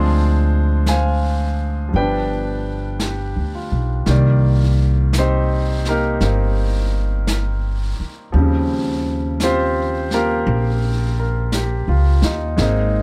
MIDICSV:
0, 0, Header, 1, 5, 480
1, 0, Start_track
1, 0, Tempo, 1065719
1, 1838, Time_signature, 4, 2, 24, 8
1, 5866, End_track
2, 0, Start_track
2, 0, Title_t, "Grand piano"
2, 0, Program_c, 0, 0
2, 0, Note_on_c, 0, 53, 54
2, 0, Note_on_c, 0, 56, 47
2, 0, Note_on_c, 0, 60, 51
2, 0, Note_on_c, 0, 62, 57
2, 0, Note_on_c, 0, 65, 54
2, 0, Note_on_c, 0, 68, 58
2, 0, Note_on_c, 0, 72, 77
2, 2, Control_c, 0, 64, 127
2, 399, Note_off_c, 0, 72, 0
2, 400, Note_on_c, 0, 80, 78
2, 402, Note_on_c, 0, 77, 54
2, 406, Note_on_c, 0, 72, 57
2, 844, Note_off_c, 0, 53, 0
2, 850, Note_on_c, 0, 53, 39
2, 859, Note_off_c, 0, 77, 0
2, 860, Note_off_c, 0, 65, 0
2, 861, Note_off_c, 0, 72, 0
2, 862, Note_off_c, 0, 68, 0
2, 867, Note_on_c, 0, 55, 39
2, 872, Note_off_c, 0, 56, 0
2, 877, Control_c, 0, 64, 0
2, 880, Note_off_c, 0, 60, 0
2, 883, Note_on_c, 0, 79, 79
2, 884, Note_on_c, 0, 59, 39
2, 886, Note_on_c, 0, 71, 53
2, 887, Note_off_c, 0, 62, 0
2, 888, Note_on_c, 0, 74, 57
2, 890, Note_off_c, 0, 80, 0
2, 901, Note_on_c, 0, 62, 47
2, 968, Control_c, 0, 64, 127
2, 1358, Note_on_c, 0, 67, 42
2, 1599, Note_on_c, 0, 65, 39
2, 1674, Note_off_c, 0, 79, 0
2, 1746, Note_off_c, 0, 67, 0
2, 1826, Note_off_c, 0, 71, 0
2, 1827, Note_off_c, 0, 53, 0
2, 1827, Note_off_c, 0, 74, 0
2, 1828, Note_off_c, 0, 55, 0
2, 1830, Note_on_c, 0, 51, 60
2, 1834, Note_on_c, 0, 55, 52
2, 1843, Control_c, 0, 64, 0
2, 1844, Note_off_c, 0, 59, 0
2, 1844, Note_on_c, 0, 58, 50
2, 1850, Note_on_c, 0, 74, 66
2, 1852, Note_off_c, 0, 62, 0
2, 1908, Control_c, 0, 64, 127
2, 1941, Note_off_c, 0, 65, 0
2, 2335, Note_on_c, 0, 72, 69
2, 2336, Note_on_c, 0, 60, 55
2, 2337, Note_on_c, 0, 67, 56
2, 2338, Note_on_c, 0, 63, 54
2, 2628, Note_off_c, 0, 72, 0
2, 2629, Note_off_c, 0, 60, 0
2, 2630, Note_off_c, 0, 63, 0
2, 2630, Note_off_c, 0, 67, 0
2, 2651, Note_on_c, 0, 70, 63
2, 2653, Note_off_c, 0, 58, 0
2, 2653, Note_on_c, 0, 67, 50
2, 2656, Note_on_c, 0, 63, 51
2, 2660, Note_on_c, 0, 58, 50
2, 2792, Note_off_c, 0, 58, 0
2, 2798, Note_on_c, 0, 58, 42
2, 2805, Note_on_c, 0, 60, 37
2, 2806, Note_off_c, 0, 63, 0
2, 2813, Note_on_c, 0, 63, 43
2, 3375, Note_off_c, 0, 70, 0
2, 3376, Note_off_c, 0, 67, 0
2, 3749, Note_on_c, 0, 53, 52
2, 3751, Note_off_c, 0, 55, 0
2, 3752, Note_off_c, 0, 51, 0
2, 3756, Note_off_c, 0, 58, 0
2, 3757, Note_on_c, 0, 55, 45
2, 3758, Note_off_c, 0, 60, 0
2, 3761, Control_c, 0, 64, 0
2, 3762, Note_off_c, 0, 74, 0
2, 3763, Note_off_c, 0, 63, 0
2, 3765, Note_on_c, 0, 60, 45
2, 3772, Note_on_c, 0, 49, 58
2, 3831, Control_c, 0, 64, 127
2, 4242, Note_off_c, 0, 60, 0
2, 4248, Note_on_c, 0, 67, 65
2, 4249, Note_on_c, 0, 60, 63
2, 4249, Note_on_c, 0, 65, 61
2, 4251, Note_on_c, 0, 72, 78
2, 4543, Note_off_c, 0, 60, 0
2, 4543, Note_off_c, 0, 65, 0
2, 4543, Note_off_c, 0, 67, 0
2, 4544, Note_off_c, 0, 72, 0
2, 4566, Note_on_c, 0, 70, 70
2, 4568, Note_on_c, 0, 65, 52
2, 4568, Note_on_c, 0, 67, 57
2, 4569, Note_on_c, 0, 58, 54
2, 5035, Note_off_c, 0, 70, 0
2, 5042, Note_on_c, 0, 70, 45
2, 5191, Note_off_c, 0, 67, 0
2, 5198, Note_on_c, 0, 67, 49
2, 5288, Note_off_c, 0, 70, 0
2, 5290, Note_off_c, 0, 65, 0
2, 5291, Note_off_c, 0, 58, 0
2, 5354, Note_on_c, 0, 65, 53
2, 5505, Note_off_c, 0, 67, 0
2, 5516, Note_on_c, 0, 63, 53
2, 5603, Note_off_c, 0, 65, 0
2, 5660, Note_on_c, 0, 56, 54
2, 5666, Note_off_c, 0, 53, 0
2, 5668, Note_on_c, 0, 58, 48
2, 5670, Note_off_c, 0, 55, 0
2, 5675, Control_c, 0, 64, 0
2, 5677, Note_off_c, 0, 63, 0
2, 5678, Note_off_c, 0, 49, 0
2, 5679, Note_on_c, 0, 60, 51
2, 5684, Note_on_c, 0, 63, 59
2, 5747, Control_c, 0, 64, 127
2, 5866, Note_off_c, 0, 56, 0
2, 5866, Note_off_c, 0, 58, 0
2, 5866, Note_off_c, 0, 60, 0
2, 5866, Note_off_c, 0, 63, 0
2, 5866, End_track
3, 0, Start_track
3, 0, Title_t, "Upright bass"
3, 0, Program_c, 1, 32
3, 0, Note_on_c, 1, 38, 75
3, 854, Note_off_c, 1, 38, 0
3, 873, Note_on_c, 1, 31, 72
3, 1499, Note_off_c, 1, 31, 0
3, 1515, Note_on_c, 1, 38, 51
3, 1665, Note_off_c, 1, 38, 0
3, 1673, Note_on_c, 1, 35, 57
3, 1824, Note_off_c, 1, 35, 0
3, 1832, Note_on_c, 1, 36, 79
3, 2777, Note_off_c, 1, 36, 0
3, 2795, Note_on_c, 1, 31, 73
3, 3586, Note_off_c, 1, 31, 0
3, 3755, Note_on_c, 1, 39, 79
3, 4695, Note_off_c, 1, 39, 0
3, 4714, Note_on_c, 1, 34, 81
3, 5333, Note_off_c, 1, 34, 0
3, 5350, Note_on_c, 1, 37, 60
3, 5498, Note_off_c, 1, 37, 0
3, 5507, Note_on_c, 1, 39, 67
3, 5657, Note_off_c, 1, 39, 0
3, 5667, Note_on_c, 1, 32, 83
3, 5866, Note_off_c, 1, 32, 0
3, 5866, End_track
4, 0, Start_track
4, 0, Title_t, "Muted upright bass strokes"
4, 3603, Note_on_c, 9, 29, 39
4, 3648, Note_off_c, 9, 29, 0
4, 5866, End_track
5, 0, Start_track
5, 0, Title_t, "Drums"
5, 388, Note_on_c, 9, 25, 33
5, 388, Note_on_c, 9, 38, 44
5, 388, Note_on_c, 9, 44, 50
5, 434, Note_off_c, 9, 38, 0
5, 434, Note_off_c, 9, 44, 0
5, 869, Note_off_c, 9, 25, 0
5, 869, Note_on_c, 9, 25, 28
5, 1349, Note_off_c, 9, 25, 0
5, 1349, Note_on_c, 9, 25, 31
5, 1349, Note_on_c, 9, 38, 41
5, 1349, Note_on_c, 9, 44, 47
5, 1394, Note_off_c, 9, 38, 0
5, 1394, Note_off_c, 9, 44, 0
5, 1829, Note_off_c, 9, 25, 0
5, 1829, Note_on_c, 9, 25, 33
5, 1829, Note_on_c, 9, 38, 29
5, 1874, Note_off_c, 9, 38, 0
5, 2311, Note_off_c, 9, 25, 0
5, 2311, Note_on_c, 9, 25, 36
5, 2311, Note_on_c, 9, 38, 48
5, 2311, Note_on_c, 9, 44, 64
5, 2356, Note_off_c, 9, 38, 0
5, 2356, Note_off_c, 9, 44, 0
5, 2635, Note_on_c, 9, 38, 27
5, 2680, Note_off_c, 9, 38, 0
5, 2795, Note_off_c, 9, 25, 0
5, 2795, Note_on_c, 9, 25, 37
5, 2795, Note_on_c, 9, 38, 30
5, 2840, Note_off_c, 9, 38, 0
5, 3276, Note_off_c, 9, 25, 0
5, 3276, Note_on_c, 9, 25, 36
5, 3276, Note_on_c, 9, 38, 48
5, 3276, Note_on_c, 9, 44, 58
5, 3321, Note_off_c, 9, 38, 0
5, 3321, Note_off_c, 9, 44, 0
5, 3753, Note_off_c, 9, 25, 0
5, 3753, Note_on_c, 9, 25, 36
5, 4233, Note_off_c, 9, 25, 0
5, 4233, Note_on_c, 9, 25, 38
5, 4233, Note_on_c, 9, 38, 46
5, 4233, Note_on_c, 9, 44, 57
5, 4278, Note_off_c, 9, 38, 0
5, 4278, Note_off_c, 9, 44, 0
5, 4553, Note_on_c, 9, 38, 28
5, 4598, Note_off_c, 9, 38, 0
5, 4711, Note_off_c, 9, 25, 0
5, 4711, Note_on_c, 9, 25, 42
5, 5189, Note_off_c, 9, 25, 0
5, 5189, Note_on_c, 9, 25, 35
5, 5189, Note_on_c, 9, 38, 48
5, 5189, Note_on_c, 9, 44, 52
5, 5234, Note_off_c, 9, 38, 0
5, 5234, Note_off_c, 9, 44, 0
5, 5504, Note_on_c, 9, 38, 28
5, 5549, Note_off_c, 9, 38, 0
5, 5663, Note_off_c, 9, 25, 0
5, 5663, Note_on_c, 9, 25, 37
5, 5663, Note_on_c, 9, 38, 31
5, 5708, Note_off_c, 9, 38, 0
5, 5866, Note_off_c, 9, 25, 0
5, 5866, End_track
0, 0, End_of_file